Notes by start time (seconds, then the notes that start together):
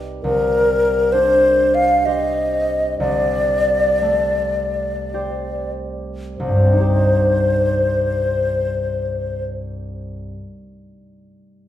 Already playing: C2 D#4 G4 B4
0.22 C2 A#4
1.12 D4 C5
1.74 F5
2.06 G4 C5 D#5
2.99 C2 D5
4.02 A3
5.14 G4 C5
6.37 C2 C5
6.48 G2
6.56 G3
6.64 C4
6.72 D#4
6.80 G4